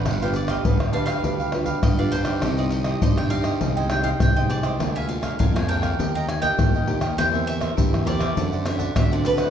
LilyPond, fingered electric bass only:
\new Staff \with { instrumentName = "Fingered electric bass" } { \clef bass \time 4/4 \key g \phrygian \tempo 4 = 101 g,,4 d,16 d,8. d,4 g,4 | c,4 g,16 g,8. c,4 c,4 | d,4 f,16 f,8. ees,4 ees,4 | e,4 g,16 e,8. fis,4 d,4 | }